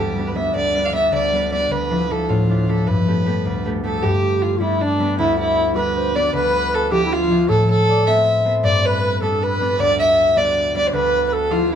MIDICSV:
0, 0, Header, 1, 4, 480
1, 0, Start_track
1, 0, Tempo, 384862
1, 680, Time_signature, 6, 3, 24, 8
1, 14657, End_track
2, 0, Start_track
2, 0, Title_t, "Fiddle"
2, 0, Program_c, 0, 110
2, 0, Note_on_c, 0, 67, 64
2, 335, Note_on_c, 0, 71, 62
2, 354, Note_off_c, 0, 67, 0
2, 448, Note_on_c, 0, 76, 73
2, 467, Note_off_c, 0, 71, 0
2, 681, Note_off_c, 0, 76, 0
2, 687, Note_on_c, 0, 74, 85
2, 1064, Note_on_c, 0, 77, 87
2, 1082, Note_off_c, 0, 74, 0
2, 1169, Note_off_c, 0, 77, 0
2, 1176, Note_on_c, 0, 76, 83
2, 1391, Note_off_c, 0, 76, 0
2, 1420, Note_on_c, 0, 74, 75
2, 1871, Note_off_c, 0, 74, 0
2, 1901, Note_on_c, 0, 74, 79
2, 2138, Note_on_c, 0, 71, 78
2, 2157, Note_off_c, 0, 74, 0
2, 2634, Note_on_c, 0, 69, 70
2, 2653, Note_off_c, 0, 71, 0
2, 2861, Note_on_c, 0, 65, 62
2, 2879, Note_off_c, 0, 69, 0
2, 3357, Note_on_c, 0, 69, 70
2, 3375, Note_off_c, 0, 65, 0
2, 3578, Note_on_c, 0, 71, 78
2, 3597, Note_off_c, 0, 69, 0
2, 4560, Note_off_c, 0, 71, 0
2, 4800, Note_on_c, 0, 69, 72
2, 5029, Note_on_c, 0, 67, 79
2, 5047, Note_off_c, 0, 69, 0
2, 5512, Note_on_c, 0, 65, 75
2, 5531, Note_off_c, 0, 67, 0
2, 5733, Note_off_c, 0, 65, 0
2, 5741, Note_on_c, 0, 64, 71
2, 6008, Note_on_c, 0, 62, 83
2, 6027, Note_off_c, 0, 64, 0
2, 6461, Note_off_c, 0, 62, 0
2, 6468, Note_on_c, 0, 64, 80
2, 6707, Note_off_c, 0, 64, 0
2, 6718, Note_on_c, 0, 64, 90
2, 7149, Note_off_c, 0, 64, 0
2, 7183, Note_on_c, 0, 71, 75
2, 7680, Note_on_c, 0, 74, 83
2, 7698, Note_off_c, 0, 71, 0
2, 7906, Note_off_c, 0, 74, 0
2, 7916, Note_on_c, 0, 71, 96
2, 8409, Note_on_c, 0, 69, 86
2, 8428, Note_off_c, 0, 71, 0
2, 8631, Note_off_c, 0, 69, 0
2, 8636, Note_on_c, 0, 67, 84
2, 8895, Note_on_c, 0, 65, 91
2, 8913, Note_off_c, 0, 67, 0
2, 9335, Note_off_c, 0, 65, 0
2, 9343, Note_on_c, 0, 69, 91
2, 9581, Note_off_c, 0, 69, 0
2, 9613, Note_on_c, 0, 69, 104
2, 10065, Note_on_c, 0, 76, 87
2, 10084, Note_off_c, 0, 69, 0
2, 10607, Note_off_c, 0, 76, 0
2, 10787, Note_on_c, 0, 74, 86
2, 11043, Note_on_c, 0, 71, 94
2, 11062, Note_off_c, 0, 74, 0
2, 11493, Note_off_c, 0, 71, 0
2, 11501, Note_on_c, 0, 69, 72
2, 11761, Note_on_c, 0, 71, 90
2, 11780, Note_off_c, 0, 69, 0
2, 12221, Note_on_c, 0, 74, 104
2, 12240, Note_off_c, 0, 71, 0
2, 12458, Note_off_c, 0, 74, 0
2, 12466, Note_on_c, 0, 76, 90
2, 12932, Note_on_c, 0, 74, 79
2, 12950, Note_off_c, 0, 76, 0
2, 13416, Note_off_c, 0, 74, 0
2, 13426, Note_on_c, 0, 74, 85
2, 13558, Note_on_c, 0, 72, 63
2, 13577, Note_off_c, 0, 74, 0
2, 13661, Note_on_c, 0, 71, 95
2, 13679, Note_off_c, 0, 72, 0
2, 14067, Note_off_c, 0, 71, 0
2, 14075, Note_on_c, 0, 71, 62
2, 14132, Note_on_c, 0, 69, 84
2, 14150, Note_off_c, 0, 71, 0
2, 14358, Note_on_c, 0, 65, 79
2, 14377, Note_off_c, 0, 69, 0
2, 14645, Note_off_c, 0, 65, 0
2, 14657, End_track
3, 0, Start_track
3, 0, Title_t, "Flute"
3, 0, Program_c, 1, 73
3, 4791, Note_on_c, 1, 69, 64
3, 4926, Note_off_c, 1, 69, 0
3, 4937, Note_on_c, 1, 69, 55
3, 5034, Note_on_c, 1, 67, 66
3, 5053, Note_off_c, 1, 69, 0
3, 5698, Note_on_c, 1, 65, 47
3, 5717, Note_off_c, 1, 67, 0
3, 5752, Note_on_c, 1, 64, 70
3, 5771, Note_off_c, 1, 65, 0
3, 6006, Note_off_c, 1, 64, 0
3, 6013, Note_on_c, 1, 62, 62
3, 6476, Note_on_c, 1, 64, 69
3, 6495, Note_off_c, 1, 62, 0
3, 6728, Note_off_c, 1, 64, 0
3, 6735, Note_on_c, 1, 64, 67
3, 7184, Note_on_c, 1, 71, 76
3, 7202, Note_off_c, 1, 64, 0
3, 7439, Note_on_c, 1, 72, 69
3, 7458, Note_off_c, 1, 71, 0
3, 7660, Note_off_c, 1, 72, 0
3, 7668, Note_on_c, 1, 74, 85
3, 7884, Note_off_c, 1, 74, 0
3, 7906, Note_on_c, 1, 71, 92
3, 8621, Note_on_c, 1, 67, 84
3, 8639, Note_off_c, 1, 71, 0
3, 8783, Note_off_c, 1, 67, 0
3, 8796, Note_on_c, 1, 64, 48
3, 8884, Note_on_c, 1, 65, 75
3, 8903, Note_off_c, 1, 64, 0
3, 9340, Note_on_c, 1, 69, 86
3, 9359, Note_off_c, 1, 65, 0
3, 9593, Note_off_c, 1, 69, 0
3, 9601, Note_on_c, 1, 69, 63
3, 9813, Note_off_c, 1, 69, 0
3, 9832, Note_on_c, 1, 74, 78
3, 10044, Note_off_c, 1, 74, 0
3, 10066, Note_on_c, 1, 76, 93
3, 10466, Note_off_c, 1, 76, 0
3, 10786, Note_on_c, 1, 74, 94
3, 11021, Note_off_c, 1, 74, 0
3, 11034, Note_on_c, 1, 71, 69
3, 11487, Note_on_c, 1, 69, 74
3, 11506, Note_off_c, 1, 71, 0
3, 11748, Note_off_c, 1, 69, 0
3, 11754, Note_on_c, 1, 71, 74
3, 12180, Note_off_c, 1, 71, 0
3, 12213, Note_on_c, 1, 74, 90
3, 12451, Note_off_c, 1, 74, 0
3, 12468, Note_on_c, 1, 76, 69
3, 12922, Note_on_c, 1, 74, 82
3, 12941, Note_off_c, 1, 76, 0
3, 13181, Note_off_c, 1, 74, 0
3, 13417, Note_on_c, 1, 74, 83
3, 13631, Note_on_c, 1, 71, 81
3, 13650, Note_off_c, 1, 74, 0
3, 14123, Note_on_c, 1, 69, 71
3, 14142, Note_off_c, 1, 71, 0
3, 14356, Note_on_c, 1, 65, 84
3, 14375, Note_off_c, 1, 69, 0
3, 14614, Note_off_c, 1, 65, 0
3, 14619, Note_on_c, 1, 64, 63
3, 14657, Note_off_c, 1, 64, 0
3, 14657, End_track
4, 0, Start_track
4, 0, Title_t, "Harp"
4, 0, Program_c, 2, 46
4, 0, Note_on_c, 2, 38, 51
4, 0, Note_on_c, 2, 55, 47
4, 0, Note_on_c, 2, 57, 50
4, 0, Note_on_c, 2, 59, 41
4, 0, Note_on_c, 2, 62, 50
4, 0, Note_on_c, 2, 64, 47
4, 0, Note_on_c, 2, 69, 44
4, 166, Note_off_c, 2, 55, 0
4, 171, Note_on_c, 2, 55, 46
4, 203, Note_off_c, 2, 59, 0
4, 208, Note_on_c, 2, 59, 39
4, 242, Note_off_c, 2, 62, 0
4, 247, Note_on_c, 2, 62, 44
4, 418, Note_off_c, 2, 55, 0
4, 433, Note_on_c, 2, 55, 47
4, 436, Note_off_c, 2, 59, 0
4, 441, Note_on_c, 2, 59, 45
4, 442, Note_off_c, 2, 62, 0
4, 447, Note_on_c, 2, 62, 50
4, 661, Note_off_c, 2, 38, 0
4, 676, Note_on_c, 2, 38, 59
4, 799, Note_off_c, 2, 64, 0
4, 917, Note_off_c, 2, 55, 0
4, 929, Note_off_c, 2, 59, 0
4, 930, Note_on_c, 2, 55, 44
4, 932, Note_off_c, 2, 62, 0
4, 934, Note_on_c, 2, 59, 40
4, 937, Note_on_c, 2, 62, 49
4, 1140, Note_off_c, 2, 55, 0
4, 1153, Note_off_c, 2, 59, 0
4, 1155, Note_on_c, 2, 55, 44
4, 1158, Note_on_c, 2, 59, 39
4, 1163, Note_off_c, 2, 62, 0
4, 1168, Note_on_c, 2, 62, 50
4, 1384, Note_off_c, 2, 38, 0
4, 1399, Note_on_c, 2, 38, 59
4, 1638, Note_off_c, 2, 55, 0
4, 1653, Note_on_c, 2, 55, 38
4, 1655, Note_off_c, 2, 59, 0
4, 1660, Note_on_c, 2, 59, 39
4, 1664, Note_off_c, 2, 62, 0
4, 1669, Note_on_c, 2, 62, 48
4, 1732, Note_off_c, 2, 69, 0
4, 1875, Note_off_c, 2, 55, 0
4, 1888, Note_on_c, 2, 55, 41
4, 1891, Note_off_c, 2, 59, 0
4, 1896, Note_on_c, 2, 59, 41
4, 1897, Note_off_c, 2, 62, 0
4, 1902, Note_on_c, 2, 62, 51
4, 2108, Note_off_c, 2, 38, 0
4, 2123, Note_on_c, 2, 38, 53
4, 2192, Note_off_c, 2, 55, 0
4, 2372, Note_on_c, 2, 53, 49
4, 2378, Note_off_c, 2, 62, 0
4, 2383, Note_on_c, 2, 62, 41
4, 2391, Note_on_c, 2, 64, 53
4, 2413, Note_off_c, 2, 57, 0
4, 2602, Note_off_c, 2, 53, 0
4, 2613, Note_off_c, 2, 62, 0
4, 2617, Note_on_c, 2, 53, 47
4, 2618, Note_on_c, 2, 62, 39
4, 2625, Note_off_c, 2, 64, 0
4, 2630, Note_on_c, 2, 64, 52
4, 2852, Note_on_c, 2, 45, 60
4, 3099, Note_off_c, 2, 53, 0
4, 3112, Note_off_c, 2, 62, 0
4, 3114, Note_on_c, 2, 53, 47
4, 3117, Note_on_c, 2, 62, 39
4, 3119, Note_off_c, 2, 64, 0
4, 3124, Note_on_c, 2, 64, 53
4, 3328, Note_off_c, 2, 53, 0
4, 3340, Note_off_c, 2, 62, 0
4, 3343, Note_on_c, 2, 53, 45
4, 3345, Note_on_c, 2, 62, 42
4, 3353, Note_off_c, 2, 64, 0
4, 3358, Note_on_c, 2, 64, 51
4, 3577, Note_on_c, 2, 43, 60
4, 3639, Note_off_c, 2, 38, 0
4, 3639, Note_off_c, 2, 45, 0
4, 3639, Note_off_c, 2, 53, 0
4, 3829, Note_on_c, 2, 57, 47
4, 3836, Note_off_c, 2, 59, 0
4, 3841, Note_on_c, 2, 59, 37
4, 3847, Note_on_c, 2, 67, 51
4, 4049, Note_off_c, 2, 57, 0
4, 4054, Note_on_c, 2, 57, 47
4, 4063, Note_off_c, 2, 59, 0
4, 4064, Note_off_c, 2, 67, 0
4, 4068, Note_on_c, 2, 59, 44
4, 4069, Note_on_c, 2, 67, 54
4, 4306, Note_on_c, 2, 38, 56
4, 4362, Note_off_c, 2, 43, 0
4, 4555, Note_off_c, 2, 57, 0
4, 4560, Note_on_c, 2, 57, 49
4, 4562, Note_off_c, 2, 59, 0
4, 4565, Note_off_c, 2, 67, 0
4, 4567, Note_on_c, 2, 59, 34
4, 4570, Note_on_c, 2, 67, 44
4, 4778, Note_off_c, 2, 57, 0
4, 4783, Note_on_c, 2, 57, 45
4, 4785, Note_off_c, 2, 59, 0
4, 4790, Note_on_c, 2, 59, 36
4, 4791, Note_off_c, 2, 67, 0
4, 4796, Note_on_c, 2, 67, 51
4, 5024, Note_on_c, 2, 43, 67
4, 5084, Note_off_c, 2, 38, 0
4, 5734, Note_on_c, 2, 55, 38
4, 5740, Note_off_c, 2, 59, 0
4, 5741, Note_off_c, 2, 62, 0
4, 5745, Note_on_c, 2, 59, 37
4, 5746, Note_on_c, 2, 62, 45
4, 6215, Note_off_c, 2, 55, 0
4, 6227, Note_on_c, 2, 55, 46
4, 6231, Note_off_c, 2, 59, 0
4, 6235, Note_off_c, 2, 62, 0
4, 6236, Note_on_c, 2, 59, 45
4, 6239, Note_on_c, 2, 62, 50
4, 6466, Note_on_c, 2, 38, 69
4, 6526, Note_off_c, 2, 43, 0
4, 6615, Note_off_c, 2, 64, 0
4, 7167, Note_off_c, 2, 55, 0
4, 7179, Note_on_c, 2, 55, 40
4, 7182, Note_off_c, 2, 59, 0
4, 7187, Note_on_c, 2, 59, 43
4, 7188, Note_off_c, 2, 62, 0
4, 7193, Note_on_c, 2, 62, 50
4, 7653, Note_off_c, 2, 55, 0
4, 7667, Note_on_c, 2, 55, 51
4, 7668, Note_off_c, 2, 59, 0
4, 7673, Note_on_c, 2, 59, 46
4, 7674, Note_off_c, 2, 62, 0
4, 7679, Note_on_c, 2, 62, 54
4, 7732, Note_off_c, 2, 67, 0
4, 7886, Note_off_c, 2, 38, 0
4, 7901, Note_on_c, 2, 38, 59
4, 7965, Note_off_c, 2, 55, 0
4, 8615, Note_off_c, 2, 62, 0
4, 8617, Note_on_c, 2, 53, 43
4, 8620, Note_on_c, 2, 62, 42
4, 8629, Note_on_c, 2, 64, 50
4, 8935, Note_off_c, 2, 57, 0
4, 9087, Note_off_c, 2, 53, 0
4, 9099, Note_off_c, 2, 62, 0
4, 9100, Note_on_c, 2, 53, 50
4, 9104, Note_on_c, 2, 62, 39
4, 9109, Note_off_c, 2, 64, 0
4, 9114, Note_on_c, 2, 64, 58
4, 9336, Note_on_c, 2, 45, 66
4, 9402, Note_off_c, 2, 38, 0
4, 9402, Note_off_c, 2, 53, 0
4, 10045, Note_off_c, 2, 59, 0
4, 10046, Note_on_c, 2, 57, 39
4, 10050, Note_on_c, 2, 59, 42
4, 10059, Note_on_c, 2, 60, 48
4, 10532, Note_off_c, 2, 57, 0
4, 10537, Note_on_c, 2, 57, 44
4, 10538, Note_off_c, 2, 59, 0
4, 10543, Note_on_c, 2, 59, 42
4, 10544, Note_off_c, 2, 60, 0
4, 10548, Note_on_c, 2, 60, 50
4, 10765, Note_on_c, 2, 43, 64
4, 10838, Note_off_c, 2, 45, 0
4, 11479, Note_on_c, 2, 55, 43
4, 11484, Note_off_c, 2, 59, 0
4, 11489, Note_off_c, 2, 62, 0
4, 11489, Note_on_c, 2, 59, 41
4, 11494, Note_on_c, 2, 62, 44
4, 11564, Note_off_c, 2, 60, 0
4, 11962, Note_off_c, 2, 55, 0
4, 11973, Note_on_c, 2, 55, 46
4, 11980, Note_off_c, 2, 59, 0
4, 11982, Note_off_c, 2, 62, 0
4, 11985, Note_on_c, 2, 59, 40
4, 11987, Note_on_c, 2, 62, 53
4, 12199, Note_on_c, 2, 38, 64
4, 12272, Note_off_c, 2, 43, 0
4, 12371, Note_off_c, 2, 64, 0
4, 12901, Note_off_c, 2, 55, 0
4, 12914, Note_off_c, 2, 59, 0
4, 12916, Note_on_c, 2, 55, 46
4, 12919, Note_on_c, 2, 59, 41
4, 12928, Note_off_c, 2, 62, 0
4, 12933, Note_on_c, 2, 62, 51
4, 13388, Note_off_c, 2, 55, 0
4, 13400, Note_on_c, 2, 55, 51
4, 13407, Note_off_c, 2, 59, 0
4, 13409, Note_off_c, 2, 62, 0
4, 13411, Note_on_c, 2, 59, 40
4, 13414, Note_on_c, 2, 62, 56
4, 13617, Note_off_c, 2, 38, 0
4, 13632, Note_on_c, 2, 38, 65
4, 13704, Note_off_c, 2, 55, 0
4, 14345, Note_off_c, 2, 62, 0
4, 14345, Note_on_c, 2, 53, 42
4, 14350, Note_on_c, 2, 62, 39
4, 14358, Note_on_c, 2, 64, 57
4, 14657, Note_off_c, 2, 38, 0
4, 14657, Note_off_c, 2, 53, 0
4, 14657, Note_off_c, 2, 57, 0
4, 14657, Note_off_c, 2, 59, 0
4, 14657, Note_off_c, 2, 62, 0
4, 14657, Note_off_c, 2, 64, 0
4, 14657, End_track
0, 0, End_of_file